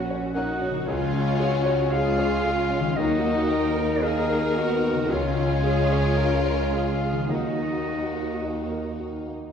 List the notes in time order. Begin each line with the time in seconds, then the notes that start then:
Already playing: A#1 A#2 A#3 C#4 F#4 A#4 C#5 F#5
0.10 C#5
0.34 A#3 C#4 D#4 F#4 A#4 F#5
0.62 C#4
0.69 C#3
0.74 G#3
0.78 C#4
0.83 C#2 G#3 C#4 F4 C#5 F5
0.88 C#2 F4
1.14 C#4
1.40 F#4 G#4
1.65 C#5
1.91 G#3 C#4 F4 G#4 F5
2.18 C#5
2.45 F4 G#4
2.70 C#4
2.80 D#3
2.84 F#3
2.89 A#4
2.93 D#2 A#3 D#4 F#4 D#5
2.99 D#4
3.24 A#3
3.50 F#4 A#4
3.76 A#4
4.02 A#3 D#4 G#4 A#4 D#5
4.30 A#4
4.56 B3 F#4
4.83 A#3
4.93 C#3
4.97 G#3
5.02 C#4
5.06 C#2 G#3 C#4 F4
5.10 C#2 C#4 F4 C#5
5.38 C#4
5.64 G#4
5.92 C#5
6.19 A#4 F5
6.46 C#5
6.73 F4 G#4 F5
7.01 C#4
7.12 D#3
7.17 F#3
7.21 A#3
7.26 D#2 D#4 F#4
7.30 D#2 A#3 D#4 D#5
7.58 A#3
7.87 F#4
8.15 A#4
8.44 D#5
8.72 A#4
9.00 F#4
9.28 A#3